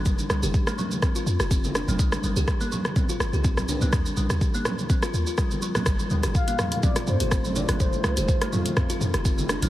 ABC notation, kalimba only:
X:1
M:4/4
L:1/16
Q:"Swing 16ths" 1/4=124
K:Fmix
V:1 name="Kalimba"
G, z G, G z A, F, z C F z G C z D A, | G, z G, G z B, F, z C F z G C z D B, | G, z G, G z B, F, z C F z F G, z F, B, | G, z G, G z B, F, z C F z G C z D B, |
G, z G, G z A, F, z C F z G C z D A, |]